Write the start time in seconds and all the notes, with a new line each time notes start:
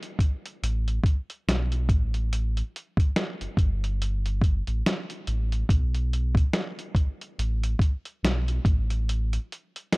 0.03 closed hi-hat
0.19 kick, closed hi-hat
0.46 closed hi-hat
0.63 A1, closed hi-hat
0.88 closed hi-hat
1.04 kick, closed hi-hat
1.30 closed hi-hat
1.48 B1, snare, closed hi-hat
1.72 closed hi-hat
1.89 A1, kick, closed hi-hat
2.14 closed hi-hat
2.33 closed hi-hat
2.57 closed hi-hat
2.76 closed hi-hat
2.97 kick, closed hi-hat
3.16 snare, closed hi-hat
3.41 G1, closed hi-hat
3.57 G1, kick, closed hi-hat
3.84 closed hi-hat
4.02 closed hi-hat
4.26 closed hi-hat
4.42 kick, closed hi-hat
4.67 A1, closed hi-hat
4.86 snare, closed hi-hat
5.10 closed hi-hat
5.27 A1, closed hi-hat
5.52 closed hi-hat
5.69 B1, kick, closed hi-hat
5.95 closed hi-hat
6.13 closed hi-hat
6.35 kick, closed hi-hat
6.53 snare, closed hi-hat
6.79 closed hi-hat
6.95 kick, closed hi-hat
7.21 closed hi-hat
7.39 A1, closed hi-hat
7.63 closed hi-hat
7.79 kick, closed hi-hat
8.05 closed hi-hat
8.23 B1, snare, closed hi-hat
8.48 closed hi-hat
8.65 A1, kick, closed hi-hat
8.90 closed hi-hat
9.09 closed hi-hat
9.33 closed hi-hat
9.52 closed hi-hat
9.76 closed hi-hat
9.93 snare, closed hi-hat